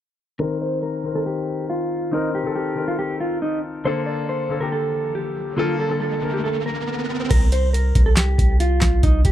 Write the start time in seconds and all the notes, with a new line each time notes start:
0.39 D#3 C4 A#4
0.62 C5
0.83 A#4
1.03 D#3 C4 A#4
1.13 D#3 C4 A4 A#4
1.26 G4
1.70 F4
2.11 D#3 C4 D#4 A#4
2.35 G4
2.44 D#3 C4 A4
2.55 G4
2.75 D#3 C4 A#4
2.88 F4
2.99 G4
3.20 F4
3.42 D#4
3.84 D3 A#3 A4 C5, riser
4.06 D5
4.29 C5
4.49 D3 A#3 A4
4.60 D3 A#3 G4 A#4
4.72 A4
5.15 G4
5.56 D3 A#3 F4 A4
5.79 A4
5.88 D3 A#3 A4
6.00 A4
6.21 D3 A#3 A#4
6.34 G4
6.44 A4
6.66 A#4
7.31 C2 A#4, kick, closed hi-hat, crash
7.52 C5, closed hi-hat
7.73 A#4, closed hi-hat
7.95 C2, kick, closed hi-hat
8.06 A4
8.17 G4, snare, clap, closed hi-hat
8.38 C2, kick, closed hi-hat
8.60 F4, closed hi-hat
8.81 C2, kick, snare, clap, closed hi-hat
9.03 C2 D#4, kick, closed hi-hat
9.25 C2 G4, kick, closed hi-hat